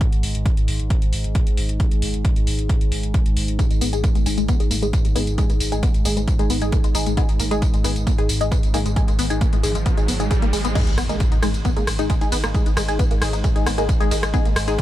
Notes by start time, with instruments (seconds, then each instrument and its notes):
Already playing: synth drone G#2
0.01 kick, closed hi-hat
0.12 sub bass G#1, closed hi-hat
0.23 sub bass G#1, open hi-hat
0.35 sub bass G#1, closed hi-hat
0.46 kick, closed hi-hat
0.57 sub bass G#1, closed hi-hat
0.68 sub bass G#1, open hi-hat
0.80 sub bass G#1, closed hi-hat
0.90 kick, closed hi-hat
1.02 sub bass G#1, closed hi-hat
1.13 sub bass G#1, open hi-hat
1.24 sub bass G#1, closed hi-hat
1.35 kick, closed hi-hat
1.47 sub bass G#1, closed hi-hat
1.57 sub bass G#1, open hi-hat
1.69 sub bass G#1, closed hi-hat
1.80 kick, closed hi-hat
1.91 sub bass G#1, closed hi-hat
2.02 sub bass G#1, open hi-hat
2.14 sub bass G#1, closed hi-hat
2.25 kick, closed hi-hat
2.36 sub bass G#1, closed hi-hat
2.47 sub bass G#1, open hi-hat
2.59 sub bass G#1, closed hi-hat
2.69 kick, closed hi-hat
2.81 sub bass G#1, closed hi-hat
2.92 sub bass G#1, open hi-hat
3.03 sub bass G#1, closed hi-hat
3.14 kick, closed hi-hat
3.26 sub bass G#1, closed hi-hat
3.37 sub bass G#1, open hi-hat
3.48 sub bass G#1, closed hi-hat
3.59 synth stab G#3 D#4 G#4, kick, closed hi-hat, tambourine
3.71 sub bass G#1, synth arpeggio sound G#3, closed hi-hat, tambourine
3.81 sub bass G#1, synth arpeggio sound B3, open hi-hat, tambourine
3.93 sub bass G#1, synth stab G#3 D#4 G#4, closed hi-hat, tambourine
4.04 synth arpeggio sound A#3, kick, closed hi-hat, tambourine
4.15 sub bass G#1, synth arpeggio sound G#3, closed hi-hat, tambourine
4.26 sub bass G#1, synth stab G#3 D#4 G#4, open hi-hat, tambourine
4.38 sub bass G#1, synth arpeggio sound G#3, closed hi-hat, tambourine
4.48 synth arpeggio sound B3, kick, closed hi-hat, tambourine
4.60 sub bass G#1, synth stab G#3 D#4 G#4, closed hi-hat, tambourine
4.71 sub bass G#1, synth arpeggio sound A#3, open hi-hat, tambourine
4.82 sub bass G#1, synth arpeggio sound G#3, synth stab G#3 D#4 G#4, closed hi-hat, tambourine
4.93 kick, closed hi-hat, tambourine
5.05 sub bass G#1, synth arpeggio sound G#3, closed hi-hat, tambourine
5.15 sub bass G#1, synth stab G#3 D#4 G#4, synth arpeggio sound B3, open hi-hat, tambourine
5.27 sub bass G#1, closed hi-hat, tambourine
5.38 synth stab G#3 D#4 G#4, synth arpeggio sound A#3, kick, closed hi-hat, tambourine
5.50 sub bass G#1, synth arpeggio sound G#3, closed hi-hat, tambourine
5.60 sub bass G#1, open hi-hat, tambourine
5.72 sub bass G#1, synth arpeggio sound G#3, synth stab G#3 D#4 G#4, closed hi-hat, tambourine
5.83 synth arpeggio sound B3, kick, closed hi-hat, tambourine
5.94 sub bass G#1, closed hi-hat, tambourine
6.05 sub bass G#1, synth stab G#3 D#4 G#4, synth arpeggio sound A#3, open hi-hat, tambourine
6.17 sub bass G#1, synth arpeggio sound G#3, closed hi-hat, tambourine
6.28 kick, closed hi-hat, tambourine
6.39 sub bass G#1, synth stab G#3 D#4 G#4, synth arpeggio sound G#3, closed hi-hat, tambourine
6.50 sub bass G#1, synth arpeggio sound B3, open hi-hat, tambourine
6.62 sub bass G#1, synth stab G#3 D#4 G#4, closed hi-hat, tambourine
6.72 synth arpeggio sound A#3, kick, closed hi-hat, tambourine
6.84 sub bass G#1, synth arpeggio sound G#3, closed hi-hat, tambourine
6.95 sub bass G#1, synth stab G#3 D#4 G#4, open hi-hat, tambourine
7.06 sub bass G#1, synth arpeggio sound G#3, closed hi-hat, tambourine
7.17 synth stab G#3 D#4 G#4, synth arpeggio sound B3, kick, closed hi-hat, tambourine, riser
7.29 sub bass G#1, closed hi-hat, tambourine
7.40 sub bass G#1, synth arpeggio sound A#3, open hi-hat, tambourine
7.51 sub bass G#1, synth stab G#3 D#4 G#4, synth arpeggio sound G#3, closed hi-hat, tambourine
7.62 kick, closed hi-hat, tambourine
7.74 sub bass G#1, synth arpeggio sound G#3, closed hi-hat, tambourine
7.84 sub bass G#1, synth stab G#3 D#4 G#4, synth arpeggio sound B3, open hi-hat, tambourine
7.96 sub bass G#1, closed hi-hat, tambourine
8.07 synth arpeggio sound A#3, kick, closed hi-hat, tambourine
8.18 sub bass G#1, synth stab G#3 D#4 G#4, synth arpeggio sound G#3, closed hi-hat, tambourine
8.29 sub bass G#1, open hi-hat, tambourine
8.41 sub bass G#1, synth stab G#3 D#4 G#4, synth arpeggio sound G#3, closed hi-hat, tambourine
8.52 synth arpeggio sound B3, kick, closed hi-hat, tambourine
8.63 sub bass G#1, closed hi-hat, tambourine
8.74 sub bass G#1, synth stab G#3 D#4 G#4, synth arpeggio sound A#3, open hi-hat, tambourine
8.86 sub bass G#1, synth arpeggio sound G#3, closed hi-hat, tambourine
8.96 synth stab G#3 D#4 G#4, kick, closed hi-hat, tambourine
9.08 sub bass G#1, synth arpeggio sound G#3, closed hi-hat, tambourine
9.19 sub bass G#1, synth arpeggio sound B3, open hi-hat, tambourine
9.30 sub bass G#1, synth stab G#3 D#4 G#4, closed hi-hat, tambourine
9.41 synth arpeggio sound A#3, kick, closed hi-hat, tambourine
9.53 sub bass G#1, synth arpeggio sound G#3, closed hi-hat, tambourine
9.63 sub bass G#1, synth stab G#3 D#4 G#4, open hi-hat, tambourine
9.75 sub bass G#1, synth arpeggio sound G#3, closed hi-hat, tambourine
9.86 synth arpeggio sound B3, kick, closed hi-hat, tambourine
9.97 sub bass G#1, synth stab G#3 D#4 G#4, closed hi-hat, tambourine
10.08 sub bass G#1, synth arpeggio sound B3, open hi-hat, tambourine
10.20 sub bass G#1, synth stab G#3 D#4 G#4, synth arpeggio sound G#3, closed hi-hat, tambourine
10.31 synth arpeggio sound G#4, kick, closed hi-hat, tambourine
10.42 sub bass G#1, synth arpeggio sound A#3, closed hi-hat, tambourine
10.53 sub bass G#1, synth arpeggio sound G#3, synth stab G#3 D#4 G#4, open hi-hat, tambourine
10.65 sub bass G#1, synth arpeggio sound B3, closed hi-hat, tambourine
10.75 synth drone G#2, synth arpeggio sound G#3, synth stab G#3 D#4 G#4, kick, closed hi-hat, crash, tambourine, impact
10.87 sub bass G#1, closed hi-hat, tambourine
10.98 sub bass G#1, synth arpeggio sound B3, cross-stick, open hi-hat, ride, tambourine
11.09 sub bass G#1, synth stab G#3 D#4 G#4, synth arpeggio sound A#3, closed hi-hat, tambourine
11.20 kick, closed hi-hat, tambourine
11.32 sub bass G#1, synth arpeggio sound D#4, closed hi-hat, tambourine
11.43 sub bass G#1, synth arpeggio sound G#3, synth stab G#3 D#4 G#4, cross-stick, open hi-hat, ride, tambourine
11.54 sub bass G#1, closed hi-hat, tambourine
11.65 synth arpeggio sound B3, kick, closed hi-hat, tambourine
11.76 sub bass G#1, synth stab G#3 D#4 G#4, synth arpeggio sound A#3, closed hi-hat, tambourine
11.87 sub bass G#1, cross-stick, open hi-hat, ride, tambourine
11.99 sub bass G#1, synth stab G#3 D#4 G#4, synth arpeggio sound D#4, closed hi-hat, tambourine
12.10 synth arpeggio sound G#3, kick, closed hi-hat, tambourine
12.21 sub bass G#1, synth stab G#3 D#4 G#4, closed hi-hat, tambourine
12.32 sub bass G#1, synth arpeggio sound B3, open hi-hat, ride, tambourine
12.44 sub bass G#1, synth arpeggio sound A#3, cross-stick, closed hi-hat, tambourine
12.54 synth stab G#3 D#4 G#4, kick, closed hi-hat, tambourine
12.66 sub bass G#1, synth arpeggio sound D#4, closed hi-hat, tambourine
12.77 sub bass G#1, synth arpeggio sound G#3, cross-stick, open hi-hat, ride, tambourine
12.88 sub bass G#1, synth stab G#3 D#4 G#4, closed hi-hat, tambourine
12.99 synth arpeggio sound B3, kick, closed hi-hat, tambourine
13.11 sub bass G#1, synth arpeggio sound A#3, closed hi-hat, tambourine
13.22 sub bass G#1, synth stab G#3 D#4 G#4, cross-stick, open hi-hat, ride, tambourine
13.33 sub bass G#1, synth arpeggio sound D#4, closed hi-hat, tambourine
13.44 synth arpeggio sound G#3, kick, closed hi-hat, tambourine
13.56 sub bass G#1, synth stab G#3 D#4 G#4, closed hi-hat, tambourine
13.66 sub bass G#1, synth arpeggio sound B3, cross-stick, open hi-hat, ride, tambourine
13.78 sub bass G#1, synth stab G#3 D#4 G#4, synth arpeggio sound A#3, closed hi-hat, tambourine
13.89 kick, closed hi-hat, tambourine
14.00 sub bass G#1, synth stab G#3 D#4 G#4, synth arpeggio sound D#4, closed hi-hat, tambourine
14.11 sub bass G#1, synth arpeggio sound G#3, open hi-hat, ride, tambourine
14.23 sub bass G#1, cross-stick, closed hi-hat, tambourine
14.34 synth stab G#3 D#4 G#4, synth arpeggio sound B3, kick, closed hi-hat, tambourine
14.45 sub bass G#1, synth arpeggio sound A#3, closed hi-hat, tambourine
14.56 sub bass G#1, cross-stick, open hi-hat, ride, tambourine
14.68 sub bass G#1, synth stab G#3 D#4 G#4, synth arpeggio sound D#4, closed hi-hat, tambourine
14.78 synth arpeggio sound G#3, kick, closed hi-hat, tambourine